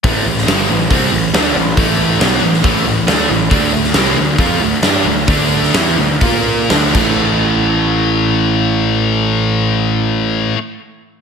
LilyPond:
<<
  \new Staff \with { instrumentName = "Distorted electric guitar" } { \clef bass \time 4/4 \key a \minor \tempo 4 = 132 <a, e a>8 <a, e>8 <g, d g>8 <a, e>8 <c g c'>8 <a, e>8 <d a d'>8 <a, e>8 | <a, e a>4 <b, fis b>8 <a, e>8 <a, e a>8 <a, e>8 <d a d'>8 <a, e>8 | <d a d'>8 <d a>8 <c g c'>8 <d a>8 <f c' f'>8 <d a>8 <g d' g'>8 <d a>8 | <d a d'>4 <e b e'>8 <d a>8 <bes f' bes'>4 <d a d'>8 <a, e a>8~ |
<a, e a>1~ | <a, e a>1 | }
  \new Staff \with { instrumentName = "Overdriven electric guitar" } { \clef bass \time 4/4 \key a \minor <a, e a>8 <a, e>8 <g, d g>8 <a, e>8 <c g c'>8 <a, e>8 <d a d'>8 <a, e>8 | <a, e a>4 <b, fis b>8 <a, e>8 <a, e a>8 <a, e>8 <d a d'>8 <a, e>8 | <d a d'>8 <d a>8 <c g c'>8 <d a>8 <f c' f'>8 <d a>8 <g d' g'>8 <d a>8 | <d a d'>4 <e b e'>8 <d a>8 <bes f' bes'>4 <d a d'>8 <a, e a>8~ |
<a, e a>1~ | <a, e a>1 | }
  \new Staff \with { instrumentName = "Picked electric bass" } { \clef bass \time 4/4 \key a \minor a,,8 a,,8 g,,8 a,,8 c,8 a,,8 d,8 a,,8 | a,,4 b,,8 a,,8 a,,8 a,,8 d,8 a,,8 | d,8 d,8 c,8 d,8 f,8 d,8 g,8 d,8 | d,4 e,8 d,8 bes,4 d,8 a,,8~ |
a,,1~ | a,,1 | }
  \new DrumStaff \with { instrumentName = "Drums" } \drummode { \time 4/4 <hho bd>8. sn16 <hho sn>4 <hho bd>4 <hho sn>4 | <hho bd>4 <hho sn>8. sn16 <hho bd>4 <hho sn>4 | <hho bd>8. sn16 <hho sn>4 <hho bd>4 <hho sn>4 | <hho bd>8. sn16 <hho sn>4 <hho bd>4 <hho sn>8 <cymc bd>8 |
r4 r4 r4 r4 | r4 r4 r4 r4 | }
>>